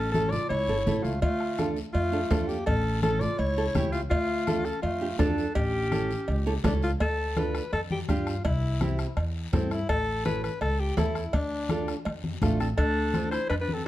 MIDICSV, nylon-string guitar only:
0, 0, Header, 1, 2, 480
1, 0, Start_track
1, 0, Tempo, 361011
1, 1631, Time_signature, 4, 2, 24, 8
1, 18452, End_track
2, 0, Start_track
2, 0, Title_t, "Nylon-string guitar"
2, 0, Program_c, 0, 24
2, 190, Note_on_c, 0, 61, 65
2, 195, Note_on_c, 0, 64, 64
2, 201, Note_on_c, 0, 69, 79
2, 443, Note_off_c, 0, 61, 0
2, 444, Note_off_c, 0, 64, 0
2, 448, Note_off_c, 0, 69, 0
2, 908, Note_on_c, 0, 61, 66
2, 913, Note_on_c, 0, 64, 58
2, 920, Note_on_c, 0, 69, 77
2, 993, Note_off_c, 0, 61, 0
2, 996, Note_off_c, 0, 64, 0
2, 999, Note_off_c, 0, 69, 0
2, 1152, Note_on_c, 0, 61, 78
2, 1159, Note_on_c, 0, 64, 69
2, 1162, Note_on_c, 0, 69, 85
2, 1488, Note_off_c, 0, 61, 0
2, 1490, Note_off_c, 0, 64, 0
2, 1492, Note_off_c, 0, 69, 0
2, 2105, Note_on_c, 0, 62, 73
2, 2113, Note_on_c, 0, 65, 63
2, 2118, Note_on_c, 0, 69, 82
2, 2360, Note_off_c, 0, 62, 0
2, 2363, Note_off_c, 0, 65, 0
2, 2366, Note_off_c, 0, 69, 0
2, 2820, Note_on_c, 0, 62, 69
2, 2826, Note_on_c, 0, 65, 66
2, 2834, Note_on_c, 0, 69, 77
2, 2909, Note_off_c, 0, 62, 0
2, 2913, Note_off_c, 0, 65, 0
2, 2915, Note_off_c, 0, 69, 0
2, 3059, Note_on_c, 0, 62, 75
2, 3067, Note_on_c, 0, 65, 68
2, 3073, Note_on_c, 0, 69, 93
2, 3401, Note_off_c, 0, 62, 0
2, 3405, Note_off_c, 0, 65, 0
2, 3408, Note_off_c, 0, 69, 0
2, 4023, Note_on_c, 0, 61, 74
2, 4028, Note_on_c, 0, 64, 67
2, 4035, Note_on_c, 0, 69, 84
2, 4279, Note_off_c, 0, 61, 0
2, 4282, Note_off_c, 0, 64, 0
2, 4283, Note_off_c, 0, 69, 0
2, 4749, Note_on_c, 0, 61, 67
2, 4755, Note_on_c, 0, 64, 62
2, 4759, Note_on_c, 0, 69, 82
2, 4834, Note_off_c, 0, 61, 0
2, 4836, Note_off_c, 0, 64, 0
2, 4838, Note_off_c, 0, 69, 0
2, 4983, Note_on_c, 0, 61, 80
2, 4993, Note_on_c, 0, 67, 89
2, 4994, Note_on_c, 0, 64, 69
2, 5322, Note_off_c, 0, 61, 0
2, 5326, Note_off_c, 0, 64, 0
2, 5328, Note_off_c, 0, 67, 0
2, 5945, Note_on_c, 0, 62, 74
2, 5951, Note_on_c, 0, 65, 65
2, 5957, Note_on_c, 0, 69, 79
2, 6199, Note_off_c, 0, 62, 0
2, 6203, Note_off_c, 0, 65, 0
2, 6204, Note_off_c, 0, 69, 0
2, 6659, Note_on_c, 0, 62, 64
2, 6664, Note_on_c, 0, 65, 59
2, 6670, Note_on_c, 0, 67, 74
2, 6748, Note_off_c, 0, 62, 0
2, 6751, Note_off_c, 0, 65, 0
2, 6754, Note_off_c, 0, 67, 0
2, 6895, Note_on_c, 0, 62, 84
2, 6900, Note_on_c, 0, 65, 74
2, 6906, Note_on_c, 0, 69, 89
2, 7238, Note_off_c, 0, 62, 0
2, 7241, Note_off_c, 0, 65, 0
2, 7244, Note_off_c, 0, 69, 0
2, 7867, Note_on_c, 0, 61, 71
2, 7872, Note_on_c, 0, 64, 70
2, 7878, Note_on_c, 0, 69, 76
2, 8120, Note_off_c, 0, 61, 0
2, 8123, Note_off_c, 0, 64, 0
2, 8126, Note_off_c, 0, 69, 0
2, 8589, Note_on_c, 0, 61, 81
2, 8596, Note_on_c, 0, 64, 72
2, 8599, Note_on_c, 0, 69, 89
2, 8673, Note_off_c, 0, 61, 0
2, 8677, Note_off_c, 0, 64, 0
2, 8678, Note_off_c, 0, 69, 0
2, 8827, Note_on_c, 0, 61, 89
2, 8837, Note_on_c, 0, 64, 84
2, 8840, Note_on_c, 0, 69, 103
2, 9165, Note_off_c, 0, 61, 0
2, 9167, Note_off_c, 0, 64, 0
2, 9171, Note_off_c, 0, 69, 0
2, 9792, Note_on_c, 0, 62, 68
2, 9799, Note_on_c, 0, 65, 62
2, 9800, Note_on_c, 0, 69, 73
2, 10127, Note_off_c, 0, 62, 0
2, 10129, Note_off_c, 0, 65, 0
2, 10131, Note_off_c, 0, 69, 0
2, 10754, Note_on_c, 0, 62, 77
2, 10759, Note_on_c, 0, 65, 69
2, 10765, Note_on_c, 0, 67, 88
2, 11088, Note_off_c, 0, 62, 0
2, 11091, Note_off_c, 0, 65, 0
2, 11093, Note_off_c, 0, 67, 0
2, 11711, Note_on_c, 0, 60, 70
2, 11717, Note_on_c, 0, 64, 65
2, 11723, Note_on_c, 0, 67, 76
2, 12047, Note_off_c, 0, 60, 0
2, 12050, Note_off_c, 0, 64, 0
2, 12053, Note_off_c, 0, 67, 0
2, 12667, Note_on_c, 0, 60, 81
2, 12673, Note_on_c, 0, 64, 72
2, 12679, Note_on_c, 0, 69, 81
2, 13005, Note_off_c, 0, 60, 0
2, 13009, Note_off_c, 0, 64, 0
2, 13010, Note_off_c, 0, 69, 0
2, 13627, Note_on_c, 0, 61, 74
2, 13632, Note_on_c, 0, 64, 64
2, 13637, Note_on_c, 0, 69, 72
2, 13965, Note_off_c, 0, 61, 0
2, 13967, Note_off_c, 0, 64, 0
2, 13970, Note_off_c, 0, 69, 0
2, 14587, Note_on_c, 0, 61, 74
2, 14593, Note_on_c, 0, 64, 70
2, 14597, Note_on_c, 0, 69, 83
2, 14926, Note_off_c, 0, 61, 0
2, 14927, Note_off_c, 0, 64, 0
2, 14930, Note_off_c, 0, 69, 0
2, 15551, Note_on_c, 0, 62, 69
2, 15557, Note_on_c, 0, 65, 64
2, 15564, Note_on_c, 0, 69, 79
2, 15887, Note_off_c, 0, 62, 0
2, 15890, Note_off_c, 0, 65, 0
2, 15894, Note_off_c, 0, 69, 0
2, 16508, Note_on_c, 0, 62, 76
2, 16514, Note_on_c, 0, 65, 72
2, 16521, Note_on_c, 0, 69, 85
2, 16846, Note_off_c, 0, 62, 0
2, 16849, Note_off_c, 0, 65, 0
2, 16852, Note_off_c, 0, 69, 0
2, 17469, Note_on_c, 0, 62, 65
2, 17475, Note_on_c, 0, 65, 63
2, 17481, Note_on_c, 0, 72, 69
2, 17806, Note_off_c, 0, 62, 0
2, 17809, Note_off_c, 0, 65, 0
2, 17812, Note_off_c, 0, 72, 0
2, 18452, End_track
0, 0, End_of_file